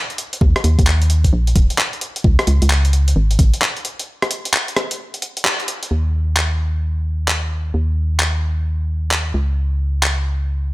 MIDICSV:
0, 0, Header, 1, 3, 480
1, 0, Start_track
1, 0, Tempo, 458015
1, 433, Time_signature, 4, 2, 24, 8
1, 11254, End_track
2, 0, Start_track
2, 0, Title_t, "FM bass"
2, 0, Program_c, 0, 39
2, 432, Note_on_c, 0, 39, 101
2, 569, Note_off_c, 0, 39, 0
2, 672, Note_on_c, 0, 39, 96
2, 809, Note_off_c, 0, 39, 0
2, 825, Note_on_c, 0, 39, 95
2, 1377, Note_off_c, 0, 39, 0
2, 1392, Note_on_c, 0, 34, 97
2, 1614, Note_off_c, 0, 34, 0
2, 1631, Note_on_c, 0, 27, 97
2, 1769, Note_off_c, 0, 27, 0
2, 2352, Note_on_c, 0, 37, 94
2, 2489, Note_off_c, 0, 37, 0
2, 2593, Note_on_c, 0, 37, 98
2, 2730, Note_off_c, 0, 37, 0
2, 2746, Note_on_c, 0, 37, 101
2, 3298, Note_off_c, 0, 37, 0
2, 3312, Note_on_c, 0, 32, 101
2, 3534, Note_off_c, 0, 32, 0
2, 3552, Note_on_c, 0, 32, 98
2, 3689, Note_off_c, 0, 32, 0
2, 6194, Note_on_c, 0, 39, 82
2, 8096, Note_off_c, 0, 39, 0
2, 8113, Note_on_c, 0, 39, 80
2, 9775, Note_off_c, 0, 39, 0
2, 9791, Note_on_c, 0, 37, 85
2, 11254, Note_off_c, 0, 37, 0
2, 11254, End_track
3, 0, Start_track
3, 0, Title_t, "Drums"
3, 105, Note_on_c, 9, 42, 35
3, 192, Note_off_c, 9, 42, 0
3, 192, Note_on_c, 9, 42, 91
3, 296, Note_off_c, 9, 42, 0
3, 345, Note_on_c, 9, 42, 62
3, 432, Note_on_c, 9, 36, 115
3, 450, Note_off_c, 9, 42, 0
3, 536, Note_off_c, 9, 36, 0
3, 586, Note_on_c, 9, 37, 52
3, 586, Note_on_c, 9, 42, 38
3, 672, Note_off_c, 9, 42, 0
3, 672, Note_on_c, 9, 42, 108
3, 691, Note_off_c, 9, 37, 0
3, 777, Note_off_c, 9, 42, 0
3, 825, Note_on_c, 9, 36, 99
3, 825, Note_on_c, 9, 42, 70
3, 911, Note_on_c, 9, 39, 108
3, 929, Note_off_c, 9, 36, 0
3, 930, Note_off_c, 9, 42, 0
3, 1016, Note_off_c, 9, 39, 0
3, 1065, Note_on_c, 9, 42, 54
3, 1151, Note_off_c, 9, 42, 0
3, 1151, Note_on_c, 9, 42, 91
3, 1256, Note_off_c, 9, 42, 0
3, 1304, Note_on_c, 9, 36, 58
3, 1305, Note_on_c, 9, 42, 68
3, 1409, Note_off_c, 9, 36, 0
3, 1409, Note_off_c, 9, 42, 0
3, 1544, Note_on_c, 9, 42, 53
3, 1631, Note_off_c, 9, 42, 0
3, 1631, Note_on_c, 9, 36, 99
3, 1631, Note_on_c, 9, 42, 105
3, 1735, Note_off_c, 9, 42, 0
3, 1736, Note_off_c, 9, 36, 0
3, 1784, Note_on_c, 9, 42, 68
3, 1870, Note_on_c, 9, 37, 30
3, 1870, Note_on_c, 9, 39, 114
3, 1889, Note_off_c, 9, 42, 0
3, 1975, Note_off_c, 9, 37, 0
3, 1975, Note_off_c, 9, 39, 0
3, 2024, Note_on_c, 9, 42, 37
3, 2110, Note_off_c, 9, 42, 0
3, 2110, Note_on_c, 9, 42, 86
3, 2215, Note_off_c, 9, 42, 0
3, 2264, Note_on_c, 9, 42, 68
3, 2351, Note_on_c, 9, 36, 109
3, 2369, Note_off_c, 9, 42, 0
3, 2456, Note_off_c, 9, 36, 0
3, 2505, Note_on_c, 9, 37, 56
3, 2505, Note_on_c, 9, 42, 38
3, 2590, Note_off_c, 9, 42, 0
3, 2590, Note_on_c, 9, 42, 104
3, 2609, Note_off_c, 9, 37, 0
3, 2695, Note_off_c, 9, 42, 0
3, 2745, Note_on_c, 9, 42, 67
3, 2831, Note_on_c, 9, 39, 108
3, 2849, Note_off_c, 9, 42, 0
3, 2936, Note_off_c, 9, 39, 0
3, 2985, Note_on_c, 9, 42, 56
3, 3072, Note_off_c, 9, 42, 0
3, 3072, Note_on_c, 9, 42, 92
3, 3176, Note_off_c, 9, 42, 0
3, 3226, Note_on_c, 9, 42, 67
3, 3331, Note_off_c, 9, 42, 0
3, 3465, Note_on_c, 9, 42, 58
3, 3552, Note_off_c, 9, 42, 0
3, 3552, Note_on_c, 9, 36, 95
3, 3552, Note_on_c, 9, 42, 106
3, 3656, Note_off_c, 9, 36, 0
3, 3657, Note_off_c, 9, 42, 0
3, 3705, Note_on_c, 9, 42, 65
3, 3793, Note_on_c, 9, 37, 31
3, 3793, Note_on_c, 9, 39, 106
3, 3810, Note_off_c, 9, 42, 0
3, 3898, Note_off_c, 9, 37, 0
3, 3898, Note_off_c, 9, 39, 0
3, 3946, Note_on_c, 9, 42, 37
3, 4033, Note_off_c, 9, 42, 0
3, 4033, Note_on_c, 9, 42, 91
3, 4138, Note_off_c, 9, 42, 0
3, 4186, Note_on_c, 9, 42, 66
3, 4291, Note_off_c, 9, 42, 0
3, 4427, Note_on_c, 9, 37, 55
3, 4427, Note_on_c, 9, 42, 36
3, 4513, Note_off_c, 9, 42, 0
3, 4513, Note_on_c, 9, 42, 112
3, 4532, Note_off_c, 9, 37, 0
3, 4618, Note_off_c, 9, 42, 0
3, 4667, Note_on_c, 9, 42, 69
3, 4754, Note_on_c, 9, 39, 113
3, 4772, Note_off_c, 9, 42, 0
3, 4859, Note_off_c, 9, 39, 0
3, 4907, Note_on_c, 9, 42, 55
3, 4994, Note_off_c, 9, 42, 0
3, 4994, Note_on_c, 9, 37, 67
3, 4994, Note_on_c, 9, 42, 95
3, 5099, Note_off_c, 9, 37, 0
3, 5099, Note_off_c, 9, 42, 0
3, 5146, Note_on_c, 9, 42, 73
3, 5251, Note_off_c, 9, 42, 0
3, 5386, Note_on_c, 9, 42, 53
3, 5472, Note_off_c, 9, 42, 0
3, 5472, Note_on_c, 9, 42, 113
3, 5577, Note_off_c, 9, 42, 0
3, 5626, Note_on_c, 9, 42, 67
3, 5713, Note_on_c, 9, 37, 31
3, 5713, Note_on_c, 9, 39, 111
3, 5731, Note_off_c, 9, 42, 0
3, 5817, Note_off_c, 9, 37, 0
3, 5817, Note_off_c, 9, 39, 0
3, 5866, Note_on_c, 9, 42, 37
3, 5953, Note_off_c, 9, 42, 0
3, 5953, Note_on_c, 9, 42, 98
3, 6058, Note_off_c, 9, 42, 0
3, 6106, Note_on_c, 9, 42, 65
3, 6211, Note_off_c, 9, 42, 0
3, 6672, Note_on_c, 9, 39, 111
3, 6777, Note_off_c, 9, 39, 0
3, 7632, Note_on_c, 9, 39, 114
3, 7737, Note_off_c, 9, 39, 0
3, 8592, Note_on_c, 9, 39, 115
3, 8696, Note_off_c, 9, 39, 0
3, 9551, Note_on_c, 9, 39, 117
3, 9656, Note_off_c, 9, 39, 0
3, 10512, Note_on_c, 9, 39, 114
3, 10617, Note_off_c, 9, 39, 0
3, 11254, End_track
0, 0, End_of_file